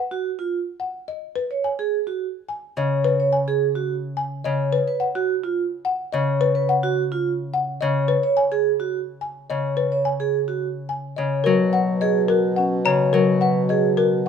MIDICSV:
0, 0, Header, 1, 6, 480
1, 0, Start_track
1, 0, Tempo, 560748
1, 1172, Time_signature, 3, 2, 24, 8
1, 12229, End_track
2, 0, Start_track
2, 0, Title_t, "Xylophone"
2, 0, Program_c, 0, 13
2, 11004, Note_on_c, 0, 82, 72
2, 11165, Note_off_c, 0, 82, 0
2, 12229, End_track
3, 0, Start_track
3, 0, Title_t, "Marimba"
3, 0, Program_c, 1, 12
3, 0, Note_on_c, 1, 78, 54
3, 126, Note_off_c, 1, 78, 0
3, 683, Note_on_c, 1, 78, 47
3, 845, Note_off_c, 1, 78, 0
3, 925, Note_on_c, 1, 75, 50
3, 1086, Note_off_c, 1, 75, 0
3, 1160, Note_on_c, 1, 71, 65
3, 1324, Note_off_c, 1, 71, 0
3, 1406, Note_on_c, 1, 80, 54
3, 1566, Note_off_c, 1, 80, 0
3, 2127, Note_on_c, 1, 80, 54
3, 2287, Note_off_c, 1, 80, 0
3, 2374, Note_on_c, 1, 75, 52
3, 2529, Note_off_c, 1, 75, 0
3, 2606, Note_on_c, 1, 71, 69
3, 2766, Note_off_c, 1, 71, 0
3, 2847, Note_on_c, 1, 80, 56
3, 3006, Note_off_c, 1, 80, 0
3, 3569, Note_on_c, 1, 80, 56
3, 3727, Note_off_c, 1, 80, 0
3, 3805, Note_on_c, 1, 75, 58
3, 3966, Note_off_c, 1, 75, 0
3, 4045, Note_on_c, 1, 71, 72
3, 4206, Note_off_c, 1, 71, 0
3, 4280, Note_on_c, 1, 78, 59
3, 4444, Note_off_c, 1, 78, 0
3, 5007, Note_on_c, 1, 78, 65
3, 5166, Note_off_c, 1, 78, 0
3, 5243, Note_on_c, 1, 75, 61
3, 5405, Note_off_c, 1, 75, 0
3, 5485, Note_on_c, 1, 71, 77
3, 5646, Note_off_c, 1, 71, 0
3, 5727, Note_on_c, 1, 78, 66
3, 5887, Note_off_c, 1, 78, 0
3, 6451, Note_on_c, 1, 78, 62
3, 6608, Note_off_c, 1, 78, 0
3, 6683, Note_on_c, 1, 75, 62
3, 6845, Note_off_c, 1, 75, 0
3, 6918, Note_on_c, 1, 71, 75
3, 7083, Note_off_c, 1, 71, 0
3, 7162, Note_on_c, 1, 80, 65
3, 7325, Note_off_c, 1, 80, 0
3, 7885, Note_on_c, 1, 80, 56
3, 8046, Note_off_c, 1, 80, 0
3, 8129, Note_on_c, 1, 75, 51
3, 8287, Note_off_c, 1, 75, 0
3, 8362, Note_on_c, 1, 71, 67
3, 8525, Note_off_c, 1, 71, 0
3, 8604, Note_on_c, 1, 80, 57
3, 8765, Note_off_c, 1, 80, 0
3, 9322, Note_on_c, 1, 80, 53
3, 9485, Note_off_c, 1, 80, 0
3, 9557, Note_on_c, 1, 75, 45
3, 9723, Note_off_c, 1, 75, 0
3, 9792, Note_on_c, 1, 70, 70
3, 9961, Note_off_c, 1, 70, 0
3, 10040, Note_on_c, 1, 78, 63
3, 10204, Note_off_c, 1, 78, 0
3, 10282, Note_on_c, 1, 75, 61
3, 10444, Note_off_c, 1, 75, 0
3, 10515, Note_on_c, 1, 70, 71
3, 10682, Note_off_c, 1, 70, 0
3, 10755, Note_on_c, 1, 78, 56
3, 10922, Note_off_c, 1, 78, 0
3, 10998, Note_on_c, 1, 73, 56
3, 11163, Note_off_c, 1, 73, 0
3, 11239, Note_on_c, 1, 70, 69
3, 11404, Note_off_c, 1, 70, 0
3, 11479, Note_on_c, 1, 78, 63
3, 11644, Note_off_c, 1, 78, 0
3, 11721, Note_on_c, 1, 75, 56
3, 11884, Note_off_c, 1, 75, 0
3, 11961, Note_on_c, 1, 70, 75
3, 12124, Note_off_c, 1, 70, 0
3, 12229, End_track
4, 0, Start_track
4, 0, Title_t, "Vibraphone"
4, 0, Program_c, 2, 11
4, 97, Note_on_c, 2, 66, 64
4, 250, Note_off_c, 2, 66, 0
4, 332, Note_on_c, 2, 65, 56
4, 488, Note_off_c, 2, 65, 0
4, 1290, Note_on_c, 2, 73, 54
4, 1447, Note_off_c, 2, 73, 0
4, 1532, Note_on_c, 2, 68, 69
4, 1688, Note_off_c, 2, 68, 0
4, 1772, Note_on_c, 2, 66, 55
4, 1928, Note_off_c, 2, 66, 0
4, 2737, Note_on_c, 2, 73, 56
4, 2890, Note_off_c, 2, 73, 0
4, 2977, Note_on_c, 2, 68, 74
4, 3130, Note_off_c, 2, 68, 0
4, 3213, Note_on_c, 2, 66, 54
4, 3368, Note_off_c, 2, 66, 0
4, 4174, Note_on_c, 2, 71, 62
4, 4329, Note_off_c, 2, 71, 0
4, 4410, Note_on_c, 2, 66, 82
4, 4568, Note_off_c, 2, 66, 0
4, 4652, Note_on_c, 2, 65, 59
4, 4808, Note_off_c, 2, 65, 0
4, 5608, Note_on_c, 2, 71, 64
4, 5767, Note_off_c, 2, 71, 0
4, 5849, Note_on_c, 2, 66, 82
4, 6007, Note_off_c, 2, 66, 0
4, 6092, Note_on_c, 2, 65, 61
4, 6248, Note_off_c, 2, 65, 0
4, 7048, Note_on_c, 2, 73, 69
4, 7207, Note_off_c, 2, 73, 0
4, 7290, Note_on_c, 2, 68, 81
4, 7448, Note_off_c, 2, 68, 0
4, 7531, Note_on_c, 2, 66, 61
4, 7688, Note_off_c, 2, 66, 0
4, 8492, Note_on_c, 2, 73, 58
4, 8648, Note_off_c, 2, 73, 0
4, 8732, Note_on_c, 2, 68, 68
4, 8888, Note_off_c, 2, 68, 0
4, 8970, Note_on_c, 2, 66, 55
4, 9127, Note_off_c, 2, 66, 0
4, 10047, Note_on_c, 2, 71, 50
4, 10206, Note_off_c, 2, 71, 0
4, 10285, Note_on_c, 2, 68, 73
4, 10446, Note_off_c, 2, 68, 0
4, 10527, Note_on_c, 2, 66, 58
4, 10686, Note_off_c, 2, 66, 0
4, 10767, Note_on_c, 2, 61, 64
4, 10926, Note_off_c, 2, 61, 0
4, 11486, Note_on_c, 2, 71, 56
4, 11646, Note_off_c, 2, 71, 0
4, 11728, Note_on_c, 2, 68, 71
4, 11887, Note_off_c, 2, 68, 0
4, 11969, Note_on_c, 2, 66, 52
4, 12127, Note_off_c, 2, 66, 0
4, 12229, End_track
5, 0, Start_track
5, 0, Title_t, "Harp"
5, 0, Program_c, 3, 46
5, 2369, Note_on_c, 3, 49, 57
5, 3800, Note_off_c, 3, 49, 0
5, 3810, Note_on_c, 3, 49, 57
5, 4070, Note_off_c, 3, 49, 0
5, 5251, Note_on_c, 3, 49, 63
5, 6683, Note_off_c, 3, 49, 0
5, 6694, Note_on_c, 3, 49, 64
5, 6952, Note_off_c, 3, 49, 0
5, 8131, Note_on_c, 3, 49, 54
5, 9558, Note_off_c, 3, 49, 0
5, 9568, Note_on_c, 3, 49, 53
5, 9809, Note_on_c, 3, 54, 66
5, 9830, Note_off_c, 3, 49, 0
5, 11009, Note_on_c, 3, 49, 61
5, 11234, Note_off_c, 3, 54, 0
5, 11244, Note_on_c, 3, 54, 68
5, 12229, Note_off_c, 3, 49, 0
5, 12229, Note_off_c, 3, 54, 0
5, 12229, End_track
6, 0, Start_track
6, 0, Title_t, "Bassoon"
6, 0, Program_c, 4, 70
6, 9806, Note_on_c, 4, 47, 62
6, 12229, Note_off_c, 4, 47, 0
6, 12229, End_track
0, 0, End_of_file